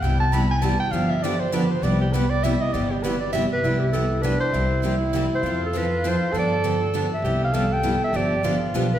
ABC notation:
X:1
M:3/4
L:1/8
Q:"Swing" 1/4=200
K:C
V:1 name="Soprano saxophone"
g a b _a =a g | f e d c B c | d G B d e _e | d G B d e z |
E4 D2 | E6 | F6 | A4- A z |
G2 A4 | G2 F4 |]
V:2 name="Clarinet"
z6 | z6 | z6 | z4 z B- |
B G A2 B c- | c3 z2 c- | c A B2 c2 | d3 z2 e- |
e f f g2 e | d3 z2 B |]
V:3 name="Steel-string acoustic guitar"
[C,G,B,EG] z [C,G,B,EG] z [C,G,B,EG] z | [D,F,B,DG] z [D,F,B,DG] z [D,F,B,DG] z | [C,G,B,EG] z [C,G,B,EG] z [C,G,B,EG] z | [C,G,B,EG] z [C,G,B,EG] z [C,G,B,EG] z |
[C,G,B,EG] z [C,G,B,EG] z [C,G,B,EG] z | [C,G,_B,EG] z [C,G,B,EG] z [C,G,B,EG] z | [F,CEA] z [F,CEA] z [F,CEA] z | [D,F,B,DG] z [D,F,B,DG] z [D,F,B,DG] z |
[C,G,B,EG] z [C,G,B,EG] z [C,G,B,EG] z | [D,F,B,DG] z [D,F,B,DG] z [D,F,B,DG] z |]
V:4 name="Steel-string acoustic guitar"
[C,G,B,EG] z [C,G,B,EG] z [C,G,B,EG] z | [D,F,B,DG] z [D,F,B,DG] z [D,F,B,DG] z | [C,G,B,EG] z [C,G,B,EG] z [C,G,B,EG] z | [C,G,B,EG] z [C,G,B,EG] z [C,G,B,EG] z |
[C,G,B,EG] z [C,G,B,EG] z [C,G,B,EG] z | [C,G,_B,EG] z [C,G,B,EG] z [C,G,B,EG] z | [F,CEA] z [F,CEA] z [F,CEA] z | [D,F,B,DG] z [D,F,B,DG] z [D,F,B,DG] z |
[C,G,B,EG] z [C,G,B,EG] z [C,G,B,EG] z | [D,F,B,DG] z [D,F,B,DG] z [D,F,B,DG] z |]
V:5 name="Upright bass" clef=bass
C,,6 | G,,,6 | C,,6 | G,,,6 |
C,,6 | C,,6 | F,,6 | G,,6 |
C,,6 | G,,,2 A,,,2 B,,,2 |]